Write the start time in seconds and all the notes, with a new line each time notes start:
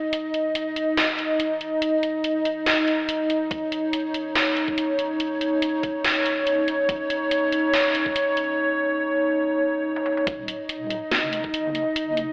Already playing: D#4 D#5
0.13 closed hi-hat
0.34 closed hi-hat
0.55 closed hi-hat
0.76 closed hi-hat
0.97 snare, closed hi-hat
1.19 closed hi-hat
1.40 closed hi-hat
1.61 closed hi-hat
1.82 closed hi-hat
2.03 closed hi-hat
2.24 closed hi-hat
2.45 closed hi-hat
2.66 snare, closed hi-hat
2.88 closed hi-hat
3.09 closed hi-hat
3.30 closed hi-hat
3.51 C#5, kick, closed hi-hat
3.72 closed hi-hat
3.93 closed hi-hat
4.14 closed hi-hat
4.35 snare, closed hi-hat
4.57 closed hi-hat
4.68 kick
4.78 closed hi-hat
4.99 closed hi-hat
5.20 closed hi-hat
5.41 closed hi-hat
5.62 closed hi-hat
5.83 kick, closed hi-hat
6.04 snare, closed hi-hat
6.26 closed hi-hat
6.47 closed hi-hat
6.68 closed hi-hat
6.89 kick, closed hi-hat
7.10 closed hi-hat
7.31 closed hi-hat
7.52 closed hi-hat
7.74 snare, closed hi-hat
7.95 closed hi-hat
8.06 kick
8.16 closed hi-hat
8.37 closed hi-hat
9.96 high tom
10.06 mid tom
10.17 mid tom
10.27 D#1 D#4 D#5, kick, closed hi-hat
10.48 closed hi-hat
10.69 closed hi-hat
10.90 closed hi-hat
11.11 F1, snare, closed hi-hat
11.33 closed hi-hat
11.44 kick
11.54 F#1, closed hi-hat
11.75 closed hi-hat
11.96 closed hi-hat
12.17 closed hi-hat